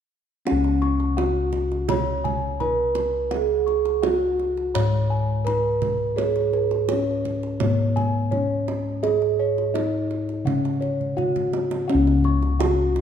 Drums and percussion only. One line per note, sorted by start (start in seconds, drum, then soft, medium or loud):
0.47 kendang high soft
0.64 kendang slap soft
0.82 kendang slap soft
1.00 kendang slap soft
1.18 kendang slap soft
1.18 kendang high medium
1.53 kendang slap soft
1.53 kendang low soft
1.72 kendang slap soft
1.89 kendang high soft
1.89 kendang low medium
2.25 kendang slap soft
2.25 kendang low medium
2.60 kendang slap soft
2.60 kendang low soft
2.95 kendang slap soft
2.95 kendang high soft
3.31 kendang high soft
3.68 kendang slap soft
3.85 kendang slap soft
4.03 kendang slap soft
4.03 kendang high soft
4.39 kendang slap soft
4.57 kendang slap soft
4.75 kendang low medium
5.47 kendang slap soft
5.47 kendang low medium
5.82 kendang slap soft
5.82 kendang low medium
6.18 kendang high soft
6.36 kendang slap soft
6.53 kendang slap soft
6.71 kendang slap soft
6.89 kendang slap soft
6.89 kendang high soft
7.25 kendang slap soft
7.25 kendang low soft
7.43 kendang slap soft
7.60 kendang high medium
7.60 kendang low medium
7.97 kendang slap soft
7.97 kendang low soft
8.32 kendang slap soft
8.32 kendang low soft
8.68 kendang slap soft
8.68 kendang high soft
9.04 kendang high soft
9.22 kendang slap soft
9.58 kendang slap soft
9.75 kendang slap soft
9.75 kendang high soft
10.11 kendang slap soft
10.29 kendang slap soft
10.47 kendang low medium
10.65 kendang slap soft
10.82 kendang slap soft
11.01 kendang low soft
11.18 kendang low soft
11.36 kendang low medium
11.53 kendang high soft
11.71 kendang high soft
11.90 kendang high medium
12.07 kendang slap soft
12.24 kendang slap soft
12.43 kendang slap soft
12.60 kendang slap soft
12.60 kendang high medium
12.96 kendang slap soft
12.96 kendang low soft